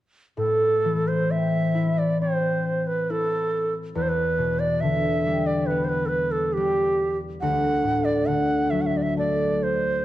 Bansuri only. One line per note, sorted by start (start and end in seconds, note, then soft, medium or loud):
0.37 1.09 A4 medium
1.08 1.32 C5 soft
1.31 2.00 E5 medium
1.98 2.20 D5 medium
2.21 2.89 C5 medium
2.87 3.12 B4 medium
3.11 3.74 A4 medium
3.95 4.03 B4 medium
4.02 4.10 C5 medium
4.09 4.61 B4 medium
4.59 4.82 D5 medium
4.81 5.48 E5 medium
5.46 5.68 D5 medium
5.66 5.86 B4 medium
5.84 5.90 C5 soft
5.89 6.07 B4 medium
6.06 6.10 A4 soft
6.06 6.33 B4 medium
6.32 6.55 A4 medium
6.53 7.18 G4 medium
7.41 8.06 F#5 medium
8.05 8.28 D5 medium
8.26 8.72 F#5 medium
8.70 8.83 E5 medium
8.81 8.88 F#5 soft
8.86 8.99 E5 medium
8.97 9.04 D5 soft
9.02 9.17 E5 medium
9.18 9.65 D5 medium
9.63 10.05 C5 medium